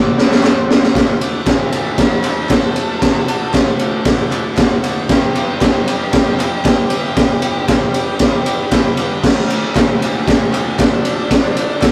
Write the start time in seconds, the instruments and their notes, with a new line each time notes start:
Already playing: overdriven electric guitar D2 A2 D3, transistor combo organ F#4 A4 D5, lead electric guitar D5
0.16 overdriven electric guitar D2 A2 D3, transistor combo organ F#4 A4 D5, snare
0.32 snare
0.42 overdriven electric guitar D2 A2 D3, transistor combo organ F#4 A4 D5, snare, clap
0.46 lead electric guitar C5
0.67 overdriven electric guitar D2 A2 D3, transistor combo organ F#4 A4 D5, snare
0.83 snare
0.94 overdriven electric guitar D2 A2 D3 A3 F#4, transistor combo organ F#4 A4 D5, kick, snare, ride
1.21 transistor combo organ F#4 A4 D5, ride
1.46 overdriven electric guitar A2 D3 A3, transistor combo organ F#4 A4 D5, lead electric guitar F#4, kick, snare, clap, ride
1.50 overdriven electric guitar F#4, lead electric guitar A4
1.72 lead electric guitar F#4 A4, transistor combo organ F#4 A4 D5, ride
1.97 overdriven electric guitar A2 D3 A3, transistor combo organ F#4 A4 D5, lead electric guitar A4 C5, kick, snare, ride
2.01 overdriven electric guitar F#4
2.22 overdriven electric guitar D3 A3 F#4, transistor combo organ F#4 A4 D5, clap, ride
2.27 lead electric guitar A4 C5
2.48 overdriven electric guitar D2 A2 D3 A3 F#4, transistor combo organ F#4 A4 D5, kick, snare, clap, ride
2.53 lead electric guitar A4
2.74 overdriven electric guitar D3 A3 F#4, transistor combo organ F#4 A4 D5, ride
3.00 overdriven electric guitar D2 A2 D3 A3 F#4, transistor combo organ F#4 A4 D5, kick, snare, ride
3.28 transistor combo organ F#4 A4 D5, ride
3.53 overdriven electric guitar A2 D3 A3 F#4, transistor combo organ F#4 A4 D5, kick, snare, clap, ride
3.79 transistor combo organ F#4 A4 D5, ride
4.05 overdriven electric guitar A2 D3 A3, transistor combo organ F#4 A4 D5, kick, snare, ride
4.09 overdriven electric guitar F#4
4.31 overdriven electric guitar D3 A3 F#4, transistor combo organ F#4 A4 D5, clap, ride
4.57 overdriven electric guitar D2 A2 D3 A3 F#4, transistor combo organ F#4 A4 D5, kick, snare, clap, ride
4.83 overdriven electric guitar D3 A3 F#4, transistor combo organ F#4 A4 D5, ride
5.08 overdriven electric guitar G2 D3 G3 B3 D4 G4, transistor combo organ G4 B4 D5, lead electric guitar B4 D5, kick, snare, ride
5.34 transistor combo organ G4 B4 D5, lead electric guitar B4 D5, ride
5.60 overdriven electric guitar G3 B3 D4, transistor combo organ G4 B4 D5, lead electric guitar B4 D5, kick, snare, clap, ride
5.64 overdriven electric guitar G4
5.87 lead electric guitar F4 A4, transistor combo organ G4 B4 D5, ride
6.11 overdriven electric guitar G3 B3 D4, lead electric guitar F4 A4, transistor combo organ G4 B4 D5, kick, snare, ride
6.16 overdriven electric guitar G4
6.38 overdriven electric guitar B3 D4 G4, lead electric guitar F4 A4, transistor combo organ G4 B4 D5, clap, ride
6.42 overdriven electric guitar G3
6.63 overdriven electric guitar G2 D3 G3 B3 D4, transistor combo organ G4 B4 D5, lead electric guitar G4, kick, snare, clap, ride
6.68 overdriven electric guitar G4
6.89 overdriven electric guitar B3 D4 G4, transistor combo organ G4 B4 D5, ride
6.94 overdriven electric guitar G3
7.15 overdriven electric guitar G2 D3 G3 B3 D4 G4, transistor combo organ G4 B4 D5, kick, snare, ride
7.42 transistor combo organ G4 B4 D5, ride
7.68 overdriven electric guitar G3 B3 D4 G4, transistor combo organ G4 B4 D5, kick, snare, clap, ride
7.94 transistor combo organ G4 B4 D5, ride
8.19 overdriven electric guitar G3 B3 D4, transistor combo organ G4 B4 D5, kick, snare, ride
8.23 overdriven electric guitar G4
8.46 overdriven electric guitar G3 B3 D4 G4, transistor combo organ G4 B4 D5, ride
8.71 overdriven electric guitar G2 D3 G3 B3 D4 G4, transistor combo organ G4 B4 D5 B5, kick, snare, clap, ride
8.97 overdriven electric guitar G3 B3 D4 G4, transistor combo organ G4 B4 D5 F#5, ride
9.22 overdriven electric guitar D2 A2 D3 A3, transistor combo organ F#4 A4 D5, lead electric guitar F#4 D5, kick, snare, crash
9.26 overdriven electric guitar F#4
9.50 lead electric guitar F#4 D5, transistor combo organ F#4 A4 D5, ride
9.74 overdriven electric guitar A2 D3 A3 F#4, transistor combo organ F#4 A4 D5, lead electric guitar F#4, kick, snare, clap, ride
9.79 lead electric guitar D5
10.02 transistor combo organ F#4 A4 D5, lead electric guitar F#4 A4, ride
10.25 overdriven electric guitar A2 D3 A3, transistor combo organ F#4 A4 D5, kick, snare, ride
10.30 overdriven electric guitar F#4, lead electric guitar F#4 A4
10.52 overdriven electric guitar A3 F#4, transistor combo organ F#4 A4 D5, lead electric guitar F#4 A4, clap, ride
10.56 overdriven electric guitar D3
10.78 overdriven electric guitar D2 A2 D3 A3, lead electric guitar D4, transistor combo organ F#4 A4 D5, kick, snare, clap, ride
10.82 overdriven electric guitar F#4
11.01 transistor combo organ F#4 A4 D5, overdriven electric guitar F#4, ride
11.06 overdriven electric guitar D3 A3
11.28 overdriven electric guitar D2 A2, transistor combo organ F#4 A4 D5, kick, snare, ride
11.32 overdriven electric guitar D3 A3 F#4
11.53 transistor combo organ F#4 A4 D5, ride
11.79 overdriven electric guitar A2 D3, transistor combo organ F#4 A4 D5, kick, snare, clap, ride
11.85 overdriven electric guitar A3 F#4